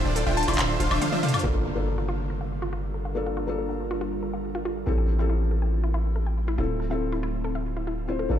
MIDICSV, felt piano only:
0, 0, Header, 1, 2, 480
1, 0, Start_track
1, 0, Tempo, 428571
1, 1616, Time_signature, 4, 2, 24, 8
1, 9397, End_track
2, 0, Start_track
2, 0, Title_t, "Felt piano"
2, 0, Program_c, 0, 0
2, 1604, Note_on_c, 0, 58, 87
2, 1611, Note_on_c, 0, 62, 81
2, 1619, Note_on_c, 0, 65, 77
2, 1627, Note_on_c, 0, 69, 93
2, 1811, Control_c, 0, 64, 127
2, 1943, Note_off_c, 0, 58, 0
2, 1946, Note_off_c, 0, 62, 0
2, 1950, Note_off_c, 0, 65, 0
2, 1954, Note_off_c, 0, 69, 0
2, 1965, Note_on_c, 0, 58, 93
2, 1973, Note_on_c, 0, 62, 84
2, 1980, Note_on_c, 0, 65, 84
2, 1988, Note_on_c, 0, 69, 95
2, 2196, Note_off_c, 0, 58, 0
2, 2200, Note_off_c, 0, 62, 0
2, 2204, Note_off_c, 0, 65, 0
2, 2208, Note_off_c, 0, 69, 0
2, 3526, Note_on_c, 0, 58, 86
2, 3534, Note_on_c, 0, 62, 79
2, 3540, Note_on_c, 0, 65, 80
2, 3547, Note_on_c, 0, 69, 94
2, 3864, Note_off_c, 0, 58, 0
2, 3868, Note_off_c, 0, 62, 0
2, 3871, Note_off_c, 0, 65, 0
2, 3875, Note_off_c, 0, 69, 0
2, 3887, Note_on_c, 0, 58, 86
2, 3894, Note_on_c, 0, 62, 80
2, 3902, Note_on_c, 0, 65, 76
2, 3910, Note_on_c, 0, 69, 99
2, 4117, Note_off_c, 0, 58, 0
2, 4121, Note_off_c, 0, 62, 0
2, 4125, Note_off_c, 0, 65, 0
2, 4129, Note_off_c, 0, 69, 0
2, 5443, Note_on_c, 0, 60, 88
2, 5450, Note_on_c, 0, 64, 82
2, 5457, Note_on_c, 0, 67, 82
2, 5465, Note_on_c, 0, 69, 100
2, 5472, Control_c, 0, 64, 0
2, 5647, Control_c, 0, 64, 127
2, 5782, Note_off_c, 0, 60, 0
2, 5786, Note_off_c, 0, 64, 0
2, 5790, Note_off_c, 0, 67, 0
2, 5793, Note_off_c, 0, 69, 0
2, 5806, Note_on_c, 0, 60, 89
2, 5814, Note_on_c, 0, 64, 84
2, 5820, Note_on_c, 0, 67, 81
2, 5828, Note_on_c, 0, 69, 98
2, 6037, Note_off_c, 0, 60, 0
2, 6041, Note_off_c, 0, 64, 0
2, 6044, Note_off_c, 0, 67, 0
2, 6048, Note_off_c, 0, 69, 0
2, 7364, Note_on_c, 0, 60, 88
2, 7372, Note_on_c, 0, 64, 78
2, 7379, Note_on_c, 0, 65, 79
2, 7387, Note_on_c, 0, 69, 94
2, 7391, Control_c, 0, 64, 0
2, 7605, Control_c, 0, 64, 127
2, 7703, Note_off_c, 0, 60, 0
2, 7707, Note_off_c, 0, 64, 0
2, 7710, Note_off_c, 0, 65, 0
2, 7714, Note_off_c, 0, 69, 0
2, 7728, Note_on_c, 0, 60, 92
2, 7735, Note_on_c, 0, 64, 79
2, 7743, Note_on_c, 0, 65, 83
2, 7750, Note_on_c, 0, 69, 94
2, 7957, Note_off_c, 0, 60, 0
2, 7961, Note_off_c, 0, 64, 0
2, 7965, Note_off_c, 0, 65, 0
2, 7969, Note_off_c, 0, 69, 0
2, 9045, Note_on_c, 0, 60, 77
2, 9053, Note_on_c, 0, 64, 70
2, 9060, Note_on_c, 0, 65, 71
2, 9068, Note_on_c, 0, 72, 84
2, 9262, Note_off_c, 0, 60, 0
2, 9266, Note_off_c, 0, 64, 0
2, 9270, Note_off_c, 0, 65, 0
2, 9274, Note_off_c, 0, 72, 0
2, 9285, Note_on_c, 0, 58, 91
2, 9292, Note_on_c, 0, 62, 83
2, 9300, Note_on_c, 0, 65, 80
2, 9307, Note_on_c, 0, 69, 95
2, 9313, Control_c, 0, 64, 0
2, 9397, Note_off_c, 0, 58, 0
2, 9397, Note_off_c, 0, 62, 0
2, 9397, Note_off_c, 0, 65, 0
2, 9397, Note_off_c, 0, 69, 0
2, 9397, End_track
0, 0, End_of_file